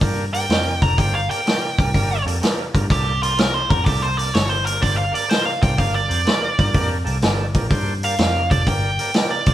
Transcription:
0.00 G2 A#3 D4 G4 A#4, kick, open hi-hat
0.33 A#3 D4 G4 A#4 G5, open hi-hat
0.50 F2 A#3 D4 G4 A#4, snare, open hi-hat
0.82 F1 A#3 D4 G4 A4 A#5, kick, open hi-hat
0.96 G1 A#3 D4 G4 C5 G5, kick, open hi-hat
1.15 F5
1.29 A#3 D4 G4 A#4 G5, muted picked electric bass stroke, open hi-hat
1.46 A#3 D4 G4 A#4, snare, open hi-hat
1.79 C2 A#3 D4 G4 A#4, kick, open hi-hat
1.94 G1 A#3 D4 G4 A#4, kick, open hi-hat
2.26 F2 A#3 D4 G4 A4, open hi-hat
2.41 A#3 D4 G4 A#4, muted picked electric bass stroke, snare, open hi-hat
2.74 G2 A#3 D4 G4 A#4, kick, open hi-hat
2.90 C2 A#3 D4 G4 A4, kick, open hi-hat
3.22 A#3 D4 F4 G4 A#4, open hi-hat
3.37 A#3 D4 G4 A#4, snare, open hi-hat
3.54 C5
3.68 F2 A#3 D4 G4 A#4, kick, open hi-hat
3.85 C2 A#3 D4 G4 A4, kick, open hi-hat
4.02 C5
4.17 A#3 D4 G4 A#4 D5, open hi-hat
4.33 G1 A#3 D4 G4 A4 C#5, snare, open hi-hat
4.49 C5
4.65 A#3 D4 G4 A#4 C5, open hi-hat
4.80 G1 A#3 D4 G4 C5 D5, kick, open hi-hat
4.97 F5
5.11 A#3 D4 G4 A#4 D5, muted picked electric bass stroke, open hi-hat
5.28 A#3 D4 G4 A#4 C5, snare, open hi-hat
5.45 F5
5.61 C2 A#3 D4 G4 C5 G5, kick, open hi-hat
5.76 G1 A#3 D4 G4 A#4 F5, kick, open hi-hat
5.95 D5
6.08 F2 A#3 D4 G4 C5, open hi-hat
6.25 A#3 D4 G4 A#4, muted picked electric bass stroke, snare, open hi-hat
6.58 G2 A#3 D4 G4 A#4, kick, open hi-hat
6.72 F2 A#3 D4 G4 A#4, kick, open hi-hat
7.04 C2 A#3 D4 G4 A4, open hi-hat
7.22 G1 A#3 D4 G4 A4, snare, open hi-hat
7.54 A#1 A#3 D4 G4 A#4, kick, open hi-hat
7.69 G2 A#3 D4 G4 C5, kick, open hi-hat
8.03 A#3 D4 G4 A#4 F5, open hi-hat
8.18 F2 A#3 D4 G4 A#4, snare, open hi-hat
8.50 F1 A#3 D4 G4 A4 D5, kick, open hi-hat
8.67 G1 A#3 D4 G4 A#4 G5, kick, open hi-hat
8.99 A#3 D4 G4 A#4, muted picked electric bass stroke, open hi-hat
9.14 A#3 D4 G4 A#4, snare, open hi-hat
9.31 D5
9.46 C2 A#3 D4 G4 C5, kick, open hi-hat

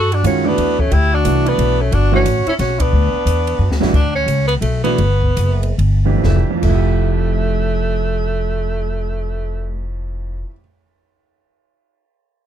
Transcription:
Already playing: G2 F#4 A4
0.12 D4 F#4, ride
0.23 F#2 D#3 G#3 C#4 F4 F#4, hi-hat pedal, ride
0.45 E3 A3 B3 D4 F#4
0.58 E2, ride
0.79 A3 C#4, kick
0.91 D2 E4 G4, ride
1.13 D4 F#4
1.25 C2 E3 A3 D4 F#4, hi-hat pedal, ride
1.46 B3 D4, ride
1.58 B1, ride
1.80 A3 C#4
1.92 G1 D4 F#4, ride
2.12 E3 A3 C#4 D4 F#4
2.26 A1, hi-hat pedal, ride
2.46 C#4 E4, muted upright bass stroke, ride
2.59 B1 C#4 F#4, snare, ride
2.79 B3 D4, kick, ride
2.92 D2
3.25 E2, hi-hat pedal, ride
3.47 ride
3.59 F#2
3.69 D2, snare
3.80 B1 G2 E3 A3 D4 F#4, snare
3.93 D2 D4, kick, crash
4.15 C#4
4.26 C#2, hi-hat pedal, ride
4.48 B3, ride
4.61 B1 A3, ride
4.84 E3 A3 B3 D4 F#4, ride
4.98 G1, ride
5.22 kick
5.36 F#1, hi-hat pedal, ride
5.63 ride
5.78 G1, ride
6.05 F2 E3 A3 D4 G4
6.11 F2
6.17 F3
6.24 F1 A3, kick, snare
6.30 E4
6.36 G4
6.50 F2
6.57 F3
6.62 F1 A3, kick, crash
6.69 E4
6.75 G4

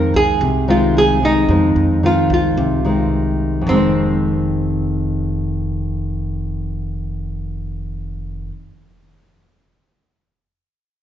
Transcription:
Already playing: F2 D#3 G#3 C4 A#4
0.14 C2 G#4
0.41 C2 C3
0.68 D#3 G#3 C4 F4
0.98 G#4
1.22 D#3 G#3 C4 D#4
1.49 F2 D#3 G#3 C4
1.76 F2
2.03 D#3 G#3 C4 F4
2.30 C2 F4
2.57 C2 C3
2.85 D#3 G#3 C4
3.61 F2
3.67 F1 D#3 C4
3.72 G#3
3.76 C4

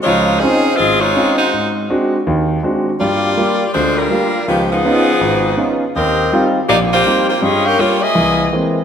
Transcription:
0.03 C#2 F3 G#3 D#4 F4 C#5
0.40 C4 C#4 D#4 F4 G#4 C5 F5
0.77 G#1 C4 F4 G#4 D#5
1.01 G#3 D#4 F4 C#5
1.16 C4 C#4 D#4 F4
1.38 G#3 D#4 F#4 C5
1.53 G#2
1.90 G#3 C4 D4 F#4
2.27 D#2 D#3
2.63 G#3 C4 D4 F#4
3.00 G2 G3 A#3 F4 G4 D5
3.37 G3 A#3 F4
3.74 D2 D3 G#3 D4 F4 C5
3.98 G3 D4 F4 A#4
4.10 G3 A#3 F4
4.48 C#2 D#3 F3 G#3 B3 G4
4.72 F3 B3 D#4 G#4
4.85 B3 C#4 D#4 F4
5.21 G#1
5.57 B3 C#4 D#4 F4
5.96 D#2 C4 G4 A#4 D#5
6.32 G3 C4 D#4 F4
6.69 A#1 A#2 A#3 D#4 G4 D5
6.93 A#3 F4 G4 C5
7.06 G3 C4 D#4 F4
7.29 A#3 F4 G4 C5
7.42 G2 G3 C#4 F4 G#4 D#5
7.66 C#4 G4 A#4 F5
7.79 G3 A#3 F4 G4 C#5
8.03 A#3 G#4 D#5 E5
8.15 C2 E3
8.52 E3 G#3 A#3 C4

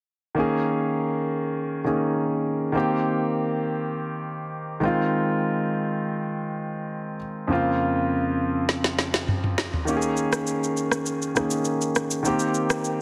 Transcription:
0.35 D#3 A#3 C#4
0.40 G#4
1.84 D#3 A#3 C#4 G#4
2.72 D#3 A#3 C4
2.77 G4
4.80 D#3 G#3 C4
4.85 F4
7.47 F2 C#3 A#3 C4
7.52 F4
8.69 snare
8.84 snare
8.99 snare
9.14 snare
9.28 mid tom
9.44 mid tom
9.58 snare
9.73 floor tom
9.85 D#3 A#3 C#4, shaker
9.90 G4
9.97 G#4
10.02 shaker
10.17 shaker
10.33 cross-stick, shaker
10.47 shaker
10.64 shaker
10.77 shaker
10.92 cross-stick, shaker
11.06 shaker
11.22 shaker
11.35 D#3 A#3 C#4 G#4, cross-stick, shaker
11.51 shaker
11.65 shaker
11.82 shaker
11.95 cross-stick, shaker
12.11 shaker
12.23 D#3 A#3 C4, shaker
12.28 G4
12.39 shaker
12.54 shaker
12.70 cross-stick, shaker
12.84 shaker

